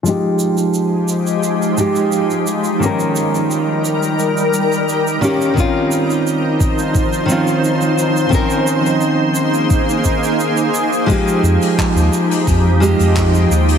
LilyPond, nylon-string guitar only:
\new Staff \with { instrumentName = "Nylon-string guitar" } { \time 4/4 \key f \minor \tempo 4 = 87 <f aes ees' g'>2~ <f aes ees' g'>8 <f aes ees' g'>4 r8 | <ees bes des' bes'>2.~ <ees bes des' bes'>8 <ees bes des' g'>8 | <ees c' des' f'>2~ <ees c' des' f'>8 <ees c' des' f'>4. | <ees c' des' bes'>2.~ <ees c' des' bes'>8 r8 |
<f aes ees' g'>2~ <f aes ees' g'>8 <f aes ees' g'>4 r8 | }